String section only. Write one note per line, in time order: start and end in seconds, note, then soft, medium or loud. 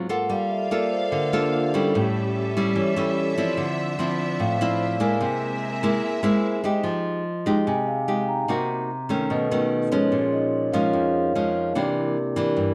0.29 1.92 A#3 medium
0.29 3.54 G4 medium
0.29 1.92 A4 medium
0.29 1.92 F5 medium
1.93 3.56 C#4 medium
1.93 3.56 A4 medium
1.93 5.18 E5 medium
3.57 5.19 D4 medium
3.57 5.19 C5 medium
5.21 6.83 C4 medium
5.21 6.84 G#4 medium
5.21 6.83 A#4 medium
5.21 6.83 E5 medium